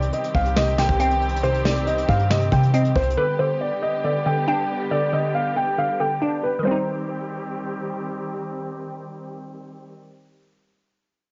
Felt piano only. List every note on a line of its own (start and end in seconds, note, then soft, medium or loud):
0.00 0.10 D5 medium
0.13 0.32 D#5 medium
0.35 0.54 F5 medium
0.56 0.75 D#5 medium
0.78 0.97 G5 medium
1.00 1.41 G5 medium
1.43 1.62 C5 medium
1.65 1.84 D5 medium
1.87 2.06 D#5 medium
2.09 2.28 F5 medium
2.30 2.49 D#5 medium
2.52 2.71 G5 medium
2.74 2.93 D#5 medium
2.96 3.15 C5 medium
3.17 3.36 B4 loud
3.39 3.58 C5 medium
3.61 3.80 D5 medium
3.82 4.01 D#5 medium
4.04 4.23 D5 medium
4.26 4.45 G5 medium
4.48 4.89 G5 medium
4.91 5.10 D5 medium
5.13 5.32 D#5 medium
5.35 5.54 F5 medium
5.56 5.75 G5 medium
5.78 5.97 F5 medium
6.00 6.19 G5 medium
6.22 6.41 D5 medium
6.43 6.62 B4 medium
6.65 7.91 C5 medium